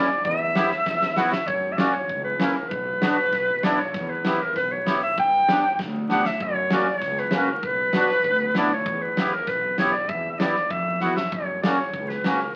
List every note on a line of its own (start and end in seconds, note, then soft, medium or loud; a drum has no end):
0.00 0.24 D5 medium
0.24 0.43 E2 medium
0.24 1.13 E5 loud
0.24 kick medium
0.55 0.70 B3 medium
0.55 0.71 E4 medium
0.55 0.71 G4 medium
0.55 snare medium
0.72 snare soft
0.86 1.23 E2 medium
0.86 kick medium
0.86 snare medium
1.01 snare medium
1.16 1.32 B3 medium
1.16 1.32 E4 medium
1.16 1.33 F#4 medium
1.16 1.31 F#5 medium
1.16 snare medium
1.32 1.48 E5 medium
1.32 snare medium
1.47 1.85 F#2 medium
1.47 1.74 C#5 loud
1.47 kick medium
1.72 1.79 E5 medium
1.77 1.94 A#3 medium
1.77 1.94 C#4 medium
1.77 1.94 F#4 medium
1.77 1.94 D5 medium
1.77 snare medium
1.93 2.23 C#5 medium
2.09 2.46 C#2 medium
2.09 kick medium
2.24 2.56 B4 medium
2.39 2.55 A#3 medium
2.39 2.55 C#4 medium
2.39 2.56 E4 medium
2.39 snare medium
2.54 2.71 A#4 medium
2.69 3.08 B1 medium
2.69 3.65 B4 loud
2.69 kick medium
3.01 3.17 B3 medium
3.01 3.17 D4 medium
3.01 3.18 F#4 medium
3.01 snare medium
3.32 3.70 B1 medium
3.32 kick medium
3.32 snare soft
3.63 3.79 B3 medium
3.63 3.79 D4 medium
3.63 3.80 E4 medium
3.63 3.81 D5 loud
3.63 snare medium
3.79 4.11 C#5 medium
3.94 4.31 E2 medium
3.94 kick medium
3.94 snare soft
4.10 4.43 B4 medium
4.25 4.40 B3 medium
4.25 4.41 E4 medium
4.25 4.41 G4 medium
4.25 snare medium
4.41 4.55 A#4 loud
4.56 4.93 B1 medium
4.56 4.73 B4 medium
4.56 kick medium
4.56 snare soft
4.72 5.02 C#5 medium
4.85 5.01 B3 medium
4.85 5.02 E4 medium
4.85 5.02 G4 medium
4.85 snare medium
5.03 5.17 E5 medium
5.18 5.55 G2 medium
5.18 5.80 G5 loud
5.18 kick medium
5.49 5.64 B3 medium
5.49 5.64 D4 medium
5.49 5.64 G4 medium
5.49 snare medium
5.79 6.16 D2 medium
5.79 kick medium
5.79 snare soft
6.09 6.25 B3 medium
6.09 6.25 D4 soft
6.09 6.25 G4 medium
6.09 6.27 F#5 medium
6.09 snare medium
6.25 6.44 E5 medium
6.25 snare medium
6.40 6.78 F#2 loud
6.40 6.73 C#5 loud
6.40 kick medium
6.70 6.86 A#3 medium
6.70 6.87 C#4 medium
6.70 6.87 F#4 medium
6.70 snare medium
6.74 6.90 D5 medium
6.89 7.21 C#5 medium
7.01 7.39 C#2 medium
7.01 kick medium
7.01 snare soft
7.17 7.52 B4 medium
7.17 snare soft
7.31 7.49 A#3 medium
7.31 7.49 C#4 medium
7.31 7.49 F#4 medium
7.31 snare medium
7.50 7.67 A#4 medium
7.63 8.00 B1 medium
7.63 8.57 B4 loud
7.63 kick medium
7.93 8.10 B3 medium
7.93 8.10 D4 medium
7.93 8.10 F#4 medium
7.93 snare medium
8.09 snare soft
8.24 8.62 D2 medium
8.24 kick medium
8.55 8.71 B3 medium
8.55 8.71 D4 medium
8.55 8.72 E4 medium
8.55 8.75 D5 medium
8.55 snare medium
8.73 9.03 C#5 medium
8.86 9.23 E2 medium
8.86 kick loud
9.02 9.35 B4 medium
9.17 9.33 B3 medium
9.17 9.33 E4 medium
9.17 9.34 G4 medium
9.17 snare medium
9.33 9.50 A#4 medium
9.47 9.84 B1 medium
9.47 9.78 B4 medium
9.47 kick medium
9.47 snare soft
9.78 9.94 B3 medium
9.78 9.94 E4 medium
9.78 9.94 G4 medium
9.78 9.93 C#5 medium
9.78 snare medium
9.92 10.10 D5 medium
10.09 10.46 E2 medium
10.09 10.32 E5 loud
10.09 kick medium
10.32 10.40 E5 soft
10.39 10.55 B3 medium
10.39 10.56 E4 medium
10.39 10.56 G4 medium
10.39 10.72 D5 medium
10.39 snare medium
10.55 snare soft
10.70 10.89 F2 medium
10.70 11.01 E5 medium
10.70 kick medium
11.00 11.15 E2 medium
11.00 11.16 B3 medium
11.00 11.17 E4 medium
11.00 11.17 F#4 medium
11.00 11.16 F#5 medium
11.00 snare soft
11.16 11.31 F#2 medium
11.16 11.34 E5 medium
11.16 snare medium
11.32 11.69 F#2 medium
11.32 11.62 C#5 medium
11.32 kick medium
11.62 11.78 A#3 medium
11.62 11.79 C#4 medium
11.62 11.79 F#4 medium
11.62 11.78 D5 medium
11.62 snare medium
11.77 12.10 C#5 medium
11.93 12.30 C#2 medium
11.93 kick medium
12.08 12.41 B4 medium
12.08 snare soft
12.24 12.39 A#3 medium
12.24 12.40 C#4 medium
12.24 12.40 F#4 medium
12.24 snare medium
12.40 12.54 A#4 medium